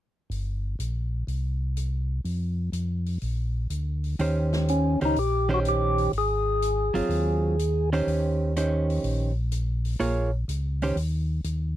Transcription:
0.30 tonewheel organ G1, open hi-hat
0.79 tonewheel organ A#1, closed hi-hat
1.27 tonewheel organ C2, open hi-hat
1.77 closed hi-hat
2.24 tonewheel organ F2, open hi-hat
2.72 tonewheel organ F2, closed hi-hat
3.06 open hi-hat
3.21 tonewheel organ A#1, open hi-hat
3.70 tonewheel organ D2, closed hi-hat
4.04 open hi-hat
4.19 tonewheel organ D#2, hollow-body jazz guitar D#3 C#4 G4 C5, open hi-hat
4.53 snare
4.68 tonewheel organ C#4, closed hi-hat
5.01 tonewheel organ C#2, hollow-body jazz guitar D#3 C#4 G4 C5, open hi-hat
5.05 tonewheel organ D#4
5.16 tonewheel organ A#1 G4, open hi-hat
5.49 hollow-body jazz guitar D#3 C#4 G4 C5
5.54 tonewheel organ F#4
5.65 tonewheel organ G4, closed hi-hat
5.98 open hi-hat
6.13 tonewheel organ G#1, open hi-hat
6.18 tonewheel organ G#4
6.62 closed hi-hat
6.94 tonewheel organ G#1, hollow-body jazz guitar F#3 C4 F4, open hi-hat
7.09 tonewheel organ D#2, open hi-hat
7.59 closed hi-hat
7.93 hollow-body jazz guitar D#3 C#4 G4 C5, open hi-hat
8.07 tonewheel organ D#2, open hi-hat
8.56 hollow-body jazz guitar D#3 C#4 G4 C5, closed hi-hat
8.90 open hi-hat
9.03 tonewheel organ A#1, open hi-hat
9.52 closed hi-hat
9.85 open hi-hat
10.00 tonewheel organ A#1, hollow-body jazz guitar A#3 F4 G#4 C#5, open hi-hat
10.48 tonewheel organ C#2, closed hi-hat
10.82 hollow-body jazz guitar D#3 C#4 G4 C5, open hi-hat
10.96 tonewheel organ D#2, open hi-hat
11.44 tonewheel organ D#2, closed hi-hat

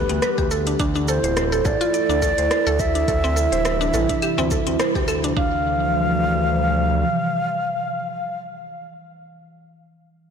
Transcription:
Already playing: singing bowl E3, ambient pad G3 B3 G4, ney B4
0.09 analog synth bass D2, synth pluck B3, closed hi-hat, shaker
0.22 synth pluck B4, cross-stick, closed hi-hat, shaker
0.38 analog synth bass D2, synth pluck G4, kick, shaker
0.51 synth pluck A4, shaker
0.67 synth pluck D4, closed hi-hat, shaker
0.79 analog synth bass D2, ambient pad A3 E4 A4, synth pluck D4, kick, closed hi-hat, shaker
0.95 synth pluck D4, shaker
1.08 synth pluck A4, ney C5, shaker
1.24 analog synth bass D1, synth pluck C5, closed hi-hat, shaker
1.37 synth pluck C5, cross-stick, closed hi-hat, shaker
1.52 synth pluck A4, shaker
1.65 analog synth bass A1, synth pluck A4, ney D5, kick, frame drum, shaker
1.81 synth pluck F4, closed hi-hat, shaker
1.94 synth pluck D5, closed hi-hat, shaker
2.09 analog synth bass D2, synth pluck D4, shaker
2.22 synth pluck A4, kick, shaker
2.38 analog synth bass D2, synth pluck C5, closed hi-hat, shaker
2.51 synth pluck C5, cross-stick, closed hi-hat, shaker
2.67 analog synth bass D2, synth pluck A4, shaker
2.79 synth pluck A4, ney E5, kick, shaker
2.95 synth pluck D4, closed hi-hat, shaker
3.08 analog synth bass D2, ambient pad C3 E3 G3 E4, synth pluck A4, kick, closed hi-hat, shaker
3.24 synth pluck C4, shaker
3.36 synth pluck A4, shaker
3.52 analog synth bass D1, synth pluck C5, closed hi-hat, shaker
3.65 synth pluck C5, cross-stick, closed hi-hat, shaker
3.81 synth pluck D4, shaker
3.94 analog synth bass A1, synth pluck A4, frame drum, shaker
4.09 synth pluck D4, kick, closed hi-hat, shaker
4.22 synth pluck G4, closed hi-hat, claves, shaker
4.38 analog synth bass D2, synth pluck C4, frame drum, shaker
4.51 synth pluck A4, kick, frame drum, shaker
4.67 analog synth bass D2, synth pluck C4, closed hi-hat, shaker
4.79 synth pluck C5, cross-stick, closed hi-hat, shaker
4.95 analog synth bass D2, synth pluck G4, kick, shaker
5.08 synth pluck A4, claves, shaker
5.24 synth pluck D4, closed hi-hat, shaker
5.37 analog synth bass D2, ambient pad C3 E3 F3 G3, synth pluck D4, ney F5, kick

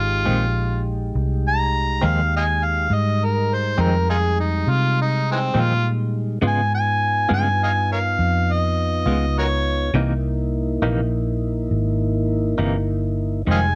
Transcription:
Already playing: fingered electric bass G#1, tonewheel organ G#3 D#4 G4, harmonica F4
0.25 fingered electric bass A#1, clean electric guitar F2 D#3 G#3 C4
1.15 fingered electric bass C2
1.48 harmonica A#5
2.02 fingered electric bass D#2, clean electric guitar F2 D#3 G#3 C4
2.06 harmonica F5
2.37 harmonica D#5 F5 G#5
2.64 harmonica F5
2.90 fingered electric bass G#2, tonewheel organ G3 G#3 D#4, harmonica D#5
3.24 harmonica A#4
3.54 harmonica C5
3.78 fingered electric bass F2, clean electric guitar F2 D#3 G#3 C4, harmonica A#4
4.10 harmonica D#4 F4 G#4
4.40 harmonica D#4
4.67 fingered electric bass C3, harmonica F4
5.01 harmonica D#4
5.31 harmonica E3 G#3 C4
5.54 clean electric guitar F2 D#3 G#3 C4, fingered electric bass A#2
5.60 harmonica F4
6.42 fingered electric bass G#2, clean electric guitar C#3 G#3 B3 F4, tonewheel organ B3 D#4 F4
6.47 harmonica G#5
6.75 harmonica G#5
7.29 fingered electric bass G2, clean electric guitar C#3 G#3 B3 F4
7.33 harmonica G#5
7.64 harmonica D#5 F5 G#5
7.92 harmonica A#4 C#5 F5
8.19 fingered electric bass F2
8.52 harmonica D#5
9.06 fingered electric bass C#2, clean electric guitar C#3 G#3 B3 F4
9.38 harmonica F#4 A#4 C#5
9.94 fingered electric bass C2, clean electric guitar C3 E3 A#3 D#4, tonewheel organ A#3 D#4 E4
10.82 fingered electric bass A#1, clean electric guitar C3 E3 A#3 D#4
11.71 fingered electric bass G#1
12.58 fingered electric bass G1, clean electric guitar C3 E3 A#3 D#4
13.45 fingered electric bass F1, clean electric guitar F2 D#3 G#3 C4, tonewheel organ G3 G#3 D#4
13.51 harmonica D#5 F5 G#5

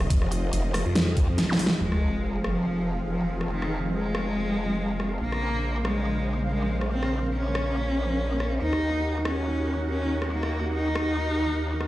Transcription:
Already playing: supersaw synth C3 F3 F4 D#5
0.01 cross-stick
0.10 wobble bass F1, kick, closed hi-hat
0.22 cross-stick
0.32 closed hi-hat
0.53 wobble bass F1, closed hi-hat
0.74 cross-stick, open hi-hat
0.86 wobble bass F2
0.95 snare, closed hi-hat
1.17 kick, closed hi-hat
1.38 snare, closed hi-hat
1.49 snare, zap
1.59 open hi-hat
1.66 snare
1.80 wobble bass F1, cello G#3, supersaw synth C4 F4 G#4 F5, sub drop
1.92 cross-stick
2.44 cello F3, cross-stick
3.08 cello F3
3.41 cross-stick
3.51 cello D#3
3.62 cross-stick
3.93 cello G#3
4.15 cross-stick
5.00 cross-stick
5.21 wobble bass A#1, supersaw synth C#3 A#4 C5, cello A#3
5.32 cross-stick
5.85 cello G#3, cross-stick
6.49 cello G#3
6.81 cross-stick
6.91 cello C4
7.03 cross-stick
7.34 cello C#4
7.55 cross-stick
8.40 cross-stick
8.61 wobble bass D#2, cello D#4, supersaw synth D#4 F#4 F#5
8.73 cross-stick
9.25 cello C#4, cross-stick
9.89 cello C#4
10.22 cross-stick
10.32 cello A#3
10.43 cross-stick
10.74 cello D#4
10.95 cross-stick
11.81 cross-stick

